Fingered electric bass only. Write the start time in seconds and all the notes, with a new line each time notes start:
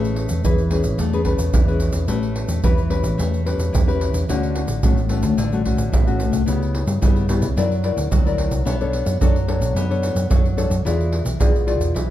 Already playing: A1
0.31 E2
0.46 E2
0.84 A1
1.00 E2
1.39 E2
1.54 E2
1.94 E2
2.08 A1
2.48 E2
2.64 E2
3.03 A1
3.19 E2
3.58 E2
3.73 E2
4.13 E2
4.29 D2
4.68 A1
4.83 A1
5.23 D2
5.38 A1
5.77 A1
5.92 A1
6.32 C2
6.47 C#2
6.86 G2
7.02 G2
7.42 C#2
7.56 F#2
7.97 D2
8.12 D2
8.51 C2
8.67 B1
9.06 F#2
9.21 F#2
9.60 B1
9.75 F#2
10.15 F#2
10.30 F#2
10.70 F#2
10.85 E2
11.25 B1
11.40 B1
11.79 E2
11.95 B1